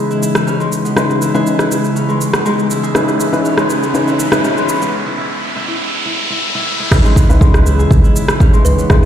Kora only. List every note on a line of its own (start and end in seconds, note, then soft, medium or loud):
0.00 0.59 G#3 loud
0.00 0.85 B3 medium
0.00 0.47 C#4 medium
0.00 0.10 E4 medium
0.00 1.22 G#4 medium
0.11 0.22 E4 medium
0.22 1.21 E4 medium
0.47 1.95 C#4 medium
0.60 0.95 G#3 medium
0.85 2.33 B3 medium
0.97 2.07 G#3 loud
1.21 1.59 E4 medium
1.34 2.71 G#4 loud
1.59 1.70 E4 medium
1.71 2.70 E4 medium
1.96 3.44 C#4 medium
2.09 2.44 G#3 medium
2.34 3.82 B3 medium
2.45 3.56 G#3 loud
2.70 3.07 E4 medium
2.83 4.20 G#4 loud
3.08 3.19 E4 medium
3.20 4.07 E4 medium
3.44 4.43 C#4 medium
3.58 4.55 G#3 medium
3.82 4.81 B3 medium
4.07 4.18 E4 medium
4.19 5.06 E4 medium
4.44 6.17 C#4 medium
4.57 6.91 G#3 medium
4.82 6.68 B3 medium
5.06 5.18 E4 medium
5.18 5.56 E4 medium
5.56 5.67 E4 medium
5.68 6.05 E4 medium
6.05 6.30 E4 medium
6.30 6.55 E4 medium
6.55 6.79 E4 medium
6.80 7.66 E4 medium
6.92 8.40 C#4 medium
7.05 7.40 G#3 medium
7.29 8.78 B3 medium
7.41 8.52 G#3 loud
7.66 8.03 E4 medium
7.79 9.05 G#4 medium
8.04 8.15 E4 medium
8.15 9.05 E4 medium
8.40 9.05 C#4 medium
8.53 8.89 G#3 medium
8.78 9.05 B3 medium
8.90 9.05 G#3 loud